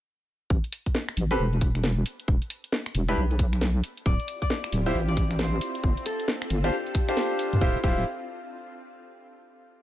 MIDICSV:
0, 0, Header, 1, 6, 480
1, 0, Start_track
1, 0, Tempo, 444444
1, 543, Time_signature, 4, 2, 24, 8
1, 10608, End_track
2, 0, Start_track
2, 0, Title_t, "Harp"
2, 0, Program_c, 0, 46
2, 4383, Note_on_c, 0, 74, 94
2, 4769, Note_off_c, 0, 74, 0
2, 4773, Note_on_c, 0, 74, 93
2, 5487, Note_off_c, 0, 74, 0
2, 5491, Note_on_c, 0, 74, 91
2, 5822, Note_on_c, 0, 72, 91
2, 6542, Note_on_c, 0, 69, 92
2, 6719, Note_off_c, 0, 69, 0
2, 7263, Note_on_c, 0, 67, 92
2, 7486, Note_off_c, 0, 74, 0
2, 7959, Note_off_c, 0, 72, 0
2, 8151, Note_off_c, 0, 67, 0
2, 8222, Note_on_c, 0, 65, 87
2, 8378, Note_off_c, 0, 65, 0
2, 8462, Note_on_c, 0, 65, 83
2, 8652, Note_off_c, 0, 65, 0
2, 10608, End_track
3, 0, Start_track
3, 0, Title_t, "Grand piano"
3, 0, Program_c, 1, 0
3, 1412, Note_on_c, 1, 71, 102
3, 1413, Note_on_c, 1, 60, 93
3, 1413, Note_on_c, 1, 67, 78
3, 1413, Note_on_c, 1, 69, 86
3, 1502, Note_off_c, 1, 71, 0
3, 1503, Note_off_c, 1, 60, 0
3, 1503, Note_off_c, 1, 67, 0
3, 1503, Note_off_c, 1, 69, 0
3, 3331, Note_on_c, 1, 64, 83
3, 3332, Note_on_c, 1, 62, 90
3, 3332, Note_on_c, 1, 67, 83
3, 3332, Note_on_c, 1, 71, 97
3, 3422, Note_off_c, 1, 62, 0
3, 3422, Note_off_c, 1, 64, 0
3, 3422, Note_off_c, 1, 67, 0
3, 3422, Note_off_c, 1, 71, 0
3, 5251, Note_on_c, 1, 64, 93
3, 5252, Note_on_c, 1, 65, 85
3, 5252, Note_on_c, 1, 67, 83
3, 5252, Note_on_c, 1, 72, 100
3, 5342, Note_off_c, 1, 64, 0
3, 5342, Note_off_c, 1, 65, 0
3, 5342, Note_off_c, 1, 67, 0
3, 5342, Note_off_c, 1, 72, 0
3, 7172, Note_on_c, 1, 62, 91
3, 7172, Note_on_c, 1, 65, 85
3, 7172, Note_on_c, 1, 67, 82
3, 7172, Note_on_c, 1, 72, 100
3, 7262, Note_off_c, 1, 62, 0
3, 7262, Note_off_c, 1, 65, 0
3, 7262, Note_off_c, 1, 67, 0
3, 7262, Note_off_c, 1, 72, 0
3, 7652, Note_on_c, 1, 62, 87
3, 7652, Note_on_c, 1, 65, 78
3, 7652, Note_on_c, 1, 67, 79
3, 7652, Note_on_c, 1, 72, 97
3, 8206, Note_off_c, 1, 65, 0
3, 8206, Note_off_c, 1, 67, 0
3, 8206, Note_off_c, 1, 72, 0
3, 8212, Note_off_c, 1, 62, 0
3, 8222, Note_on_c, 1, 64, 86
3, 8222, Note_on_c, 1, 65, 78
3, 8222, Note_on_c, 1, 67, 79
3, 8222, Note_on_c, 1, 72, 90
3, 8378, Note_off_c, 1, 64, 0
3, 8378, Note_off_c, 1, 65, 0
3, 8378, Note_off_c, 1, 67, 0
3, 8378, Note_off_c, 1, 72, 0
3, 8462, Note_on_c, 1, 64, 87
3, 8462, Note_on_c, 1, 65, 82
3, 8462, Note_on_c, 1, 72, 97
3, 8463, Note_on_c, 1, 67, 78
3, 8652, Note_off_c, 1, 64, 0
3, 8652, Note_off_c, 1, 65, 0
3, 8652, Note_off_c, 1, 67, 0
3, 8652, Note_off_c, 1, 72, 0
3, 10608, End_track
4, 0, Start_track
4, 0, Title_t, "String machine"
4, 0, Program_c, 2, 50
4, 4382, Note_on_c, 2, 67, 96
4, 4383, Note_on_c, 2, 60, 89
4, 4383, Note_on_c, 2, 64, 79
4, 4383, Note_on_c, 2, 65, 76
4, 6283, Note_off_c, 2, 67, 0
4, 6284, Note_off_c, 2, 64, 0
4, 6284, Note_off_c, 2, 65, 0
4, 6304, Note_on_c, 2, 62, 77
4, 6304, Note_on_c, 2, 65, 79
4, 6304, Note_on_c, 2, 69, 95
4, 8185, Note_off_c, 2, 60, 0
4, 8204, Note_off_c, 2, 62, 0
4, 8204, Note_off_c, 2, 65, 0
4, 8204, Note_off_c, 2, 69, 0
4, 10608, End_track
5, 0, Start_track
5, 0, Title_t, "Wobble bass"
5, 0, Program_c, 3, 39
5, 543, Note_on_c, 3, 33, 95
5, 671, Note_off_c, 3, 33, 0
5, 1263, Note_on_c, 3, 33, 85
5, 1477, Note_off_c, 3, 33, 0
5, 1504, Note_on_c, 3, 28, 83
5, 2202, Note_off_c, 3, 28, 0
5, 2463, Note_on_c, 3, 28, 96
5, 2591, Note_off_c, 3, 28, 0
5, 3183, Note_on_c, 3, 28, 85
5, 3397, Note_off_c, 3, 28, 0
5, 3422, Note_on_c, 3, 35, 84
5, 4122, Note_off_c, 3, 35, 0
5, 4383, Note_on_c, 3, 26, 102
5, 4511, Note_off_c, 3, 26, 0
5, 5102, Note_on_c, 3, 26, 85
5, 5316, Note_off_c, 3, 26, 0
5, 5341, Note_on_c, 3, 33, 83
5, 6041, Note_off_c, 3, 33, 0
5, 6303, Note_on_c, 3, 31, 100
5, 6431, Note_off_c, 3, 31, 0
5, 7022, Note_on_c, 3, 31, 86
5, 7237, Note_off_c, 3, 31, 0
5, 8132, Note_on_c, 3, 43, 98
5, 8210, Note_off_c, 3, 43, 0
5, 8223, Note_on_c, 3, 26, 98
5, 8379, Note_off_c, 3, 26, 0
5, 8463, Note_on_c, 3, 26, 106
5, 8686, Note_off_c, 3, 26, 0
5, 10608, End_track
6, 0, Start_track
6, 0, Title_t, "Drums"
6, 543, Note_on_c, 9, 36, 121
6, 651, Note_off_c, 9, 36, 0
6, 692, Note_on_c, 9, 42, 51
6, 783, Note_on_c, 9, 46, 114
6, 800, Note_off_c, 9, 42, 0
6, 891, Note_off_c, 9, 46, 0
6, 932, Note_on_c, 9, 36, 60
6, 932, Note_on_c, 9, 42, 71
6, 1022, Note_on_c, 9, 38, 120
6, 1040, Note_off_c, 9, 36, 0
6, 1040, Note_off_c, 9, 42, 0
6, 1130, Note_off_c, 9, 38, 0
6, 1172, Note_on_c, 9, 26, 70
6, 1172, Note_on_c, 9, 42, 53
6, 1263, Note_on_c, 9, 46, 113
6, 1280, Note_off_c, 9, 26, 0
6, 1280, Note_off_c, 9, 42, 0
6, 1371, Note_off_c, 9, 46, 0
6, 1412, Note_on_c, 9, 42, 68
6, 1520, Note_off_c, 9, 42, 0
6, 1652, Note_on_c, 9, 42, 36
6, 1742, Note_on_c, 9, 46, 118
6, 1743, Note_on_c, 9, 36, 106
6, 1760, Note_off_c, 9, 42, 0
6, 1850, Note_off_c, 9, 46, 0
6, 1851, Note_off_c, 9, 36, 0
6, 1892, Note_on_c, 9, 26, 34
6, 1892, Note_on_c, 9, 42, 68
6, 1983, Note_on_c, 9, 38, 121
6, 2000, Note_off_c, 9, 26, 0
6, 2000, Note_off_c, 9, 42, 0
6, 2091, Note_off_c, 9, 38, 0
6, 2222, Note_on_c, 9, 46, 106
6, 2330, Note_off_c, 9, 46, 0
6, 2372, Note_on_c, 9, 42, 65
6, 2463, Note_on_c, 9, 36, 127
6, 2480, Note_off_c, 9, 42, 0
6, 2571, Note_off_c, 9, 36, 0
6, 2612, Note_on_c, 9, 42, 51
6, 2702, Note_on_c, 9, 46, 109
6, 2720, Note_off_c, 9, 42, 0
6, 2810, Note_off_c, 9, 46, 0
6, 2852, Note_on_c, 9, 42, 67
6, 2942, Note_on_c, 9, 38, 121
6, 2960, Note_off_c, 9, 42, 0
6, 3050, Note_off_c, 9, 38, 0
6, 3092, Note_on_c, 9, 26, 68
6, 3092, Note_on_c, 9, 42, 54
6, 3182, Note_on_c, 9, 46, 108
6, 3200, Note_off_c, 9, 26, 0
6, 3200, Note_off_c, 9, 42, 0
6, 3290, Note_off_c, 9, 46, 0
6, 3332, Note_on_c, 9, 42, 64
6, 3440, Note_off_c, 9, 42, 0
6, 3572, Note_on_c, 9, 42, 37
6, 3662, Note_on_c, 9, 46, 116
6, 3663, Note_on_c, 9, 36, 113
6, 3680, Note_off_c, 9, 42, 0
6, 3770, Note_off_c, 9, 46, 0
6, 3771, Note_off_c, 9, 36, 0
6, 3813, Note_on_c, 9, 26, 34
6, 3813, Note_on_c, 9, 42, 67
6, 3903, Note_on_c, 9, 38, 127
6, 3921, Note_off_c, 9, 26, 0
6, 3921, Note_off_c, 9, 42, 0
6, 4011, Note_off_c, 9, 38, 0
6, 4143, Note_on_c, 9, 46, 107
6, 4251, Note_off_c, 9, 46, 0
6, 4293, Note_on_c, 9, 42, 62
6, 4381, Note_on_c, 9, 82, 57
6, 4383, Note_on_c, 9, 36, 127
6, 4401, Note_off_c, 9, 42, 0
6, 4489, Note_off_c, 9, 82, 0
6, 4491, Note_off_c, 9, 36, 0
6, 4533, Note_on_c, 9, 42, 51
6, 4535, Note_on_c, 9, 82, 29
6, 4623, Note_on_c, 9, 46, 104
6, 4625, Note_off_c, 9, 82, 0
6, 4625, Note_on_c, 9, 82, 91
6, 4641, Note_off_c, 9, 42, 0
6, 4731, Note_off_c, 9, 46, 0
6, 4733, Note_off_c, 9, 82, 0
6, 4772, Note_on_c, 9, 36, 64
6, 4772, Note_on_c, 9, 42, 67
6, 4780, Note_on_c, 9, 82, 40
6, 4862, Note_on_c, 9, 38, 124
6, 4868, Note_off_c, 9, 82, 0
6, 4868, Note_on_c, 9, 82, 52
6, 4880, Note_off_c, 9, 36, 0
6, 4880, Note_off_c, 9, 42, 0
6, 4970, Note_off_c, 9, 38, 0
6, 4976, Note_off_c, 9, 82, 0
6, 5012, Note_on_c, 9, 26, 69
6, 5012, Note_on_c, 9, 42, 52
6, 5013, Note_on_c, 9, 82, 27
6, 5101, Note_off_c, 9, 82, 0
6, 5101, Note_on_c, 9, 82, 97
6, 5103, Note_on_c, 9, 46, 105
6, 5120, Note_off_c, 9, 26, 0
6, 5120, Note_off_c, 9, 42, 0
6, 5209, Note_off_c, 9, 82, 0
6, 5211, Note_off_c, 9, 46, 0
6, 5250, Note_on_c, 9, 82, 44
6, 5252, Note_on_c, 9, 42, 66
6, 5337, Note_off_c, 9, 82, 0
6, 5337, Note_on_c, 9, 82, 54
6, 5360, Note_off_c, 9, 42, 0
6, 5445, Note_off_c, 9, 82, 0
6, 5491, Note_on_c, 9, 82, 27
6, 5493, Note_on_c, 9, 42, 35
6, 5581, Note_off_c, 9, 82, 0
6, 5581, Note_on_c, 9, 82, 104
6, 5582, Note_on_c, 9, 46, 113
6, 5583, Note_on_c, 9, 36, 113
6, 5601, Note_off_c, 9, 42, 0
6, 5689, Note_off_c, 9, 82, 0
6, 5690, Note_off_c, 9, 46, 0
6, 5691, Note_off_c, 9, 36, 0
6, 5732, Note_on_c, 9, 26, 33
6, 5732, Note_on_c, 9, 42, 62
6, 5734, Note_on_c, 9, 82, 41
6, 5822, Note_on_c, 9, 38, 127
6, 5823, Note_off_c, 9, 82, 0
6, 5823, Note_on_c, 9, 82, 52
6, 5840, Note_off_c, 9, 26, 0
6, 5840, Note_off_c, 9, 42, 0
6, 5930, Note_off_c, 9, 38, 0
6, 5931, Note_off_c, 9, 82, 0
6, 5971, Note_on_c, 9, 82, 29
6, 6060, Note_off_c, 9, 82, 0
6, 6060, Note_on_c, 9, 82, 96
6, 6062, Note_on_c, 9, 46, 102
6, 6168, Note_off_c, 9, 82, 0
6, 6170, Note_off_c, 9, 46, 0
6, 6211, Note_on_c, 9, 42, 64
6, 6218, Note_on_c, 9, 82, 42
6, 6302, Note_off_c, 9, 82, 0
6, 6302, Note_on_c, 9, 82, 52
6, 6303, Note_on_c, 9, 36, 126
6, 6319, Note_off_c, 9, 42, 0
6, 6410, Note_off_c, 9, 82, 0
6, 6411, Note_off_c, 9, 36, 0
6, 6452, Note_on_c, 9, 42, 52
6, 6458, Note_on_c, 9, 82, 27
6, 6542, Note_on_c, 9, 46, 104
6, 6546, Note_off_c, 9, 82, 0
6, 6546, Note_on_c, 9, 82, 89
6, 6560, Note_off_c, 9, 42, 0
6, 6650, Note_off_c, 9, 46, 0
6, 6654, Note_off_c, 9, 82, 0
6, 6692, Note_on_c, 9, 42, 64
6, 6700, Note_on_c, 9, 82, 46
6, 6782, Note_off_c, 9, 82, 0
6, 6782, Note_on_c, 9, 82, 54
6, 6783, Note_on_c, 9, 38, 127
6, 6800, Note_off_c, 9, 42, 0
6, 6890, Note_off_c, 9, 82, 0
6, 6891, Note_off_c, 9, 38, 0
6, 6932, Note_on_c, 9, 26, 70
6, 6932, Note_on_c, 9, 42, 52
6, 6935, Note_on_c, 9, 82, 26
6, 7017, Note_off_c, 9, 82, 0
6, 7017, Note_on_c, 9, 82, 90
6, 7023, Note_on_c, 9, 46, 106
6, 7040, Note_off_c, 9, 26, 0
6, 7040, Note_off_c, 9, 42, 0
6, 7125, Note_off_c, 9, 82, 0
6, 7131, Note_off_c, 9, 46, 0
6, 7169, Note_on_c, 9, 82, 43
6, 7173, Note_on_c, 9, 42, 65
6, 7259, Note_off_c, 9, 82, 0
6, 7259, Note_on_c, 9, 82, 54
6, 7281, Note_off_c, 9, 42, 0
6, 7367, Note_off_c, 9, 82, 0
6, 7411, Note_on_c, 9, 82, 30
6, 7413, Note_on_c, 9, 42, 37
6, 7503, Note_off_c, 9, 82, 0
6, 7503, Note_on_c, 9, 36, 105
6, 7503, Note_on_c, 9, 46, 108
6, 7503, Note_on_c, 9, 82, 90
6, 7521, Note_off_c, 9, 42, 0
6, 7611, Note_off_c, 9, 36, 0
6, 7611, Note_off_c, 9, 46, 0
6, 7611, Note_off_c, 9, 82, 0
6, 7651, Note_on_c, 9, 82, 42
6, 7653, Note_on_c, 9, 26, 32
6, 7653, Note_on_c, 9, 42, 65
6, 7743, Note_on_c, 9, 38, 127
6, 7750, Note_off_c, 9, 82, 0
6, 7750, Note_on_c, 9, 82, 56
6, 7761, Note_off_c, 9, 26, 0
6, 7761, Note_off_c, 9, 42, 0
6, 7851, Note_off_c, 9, 38, 0
6, 7858, Note_off_c, 9, 82, 0
6, 7890, Note_on_c, 9, 82, 29
6, 7982, Note_on_c, 9, 46, 101
6, 7991, Note_off_c, 9, 82, 0
6, 7991, Note_on_c, 9, 82, 86
6, 8090, Note_off_c, 9, 46, 0
6, 8099, Note_off_c, 9, 82, 0
6, 8132, Note_on_c, 9, 42, 63
6, 8132, Note_on_c, 9, 82, 38
6, 8223, Note_on_c, 9, 36, 120
6, 8240, Note_off_c, 9, 42, 0
6, 8240, Note_off_c, 9, 82, 0
6, 8331, Note_off_c, 9, 36, 0
6, 8463, Note_on_c, 9, 36, 115
6, 8571, Note_off_c, 9, 36, 0
6, 10608, End_track
0, 0, End_of_file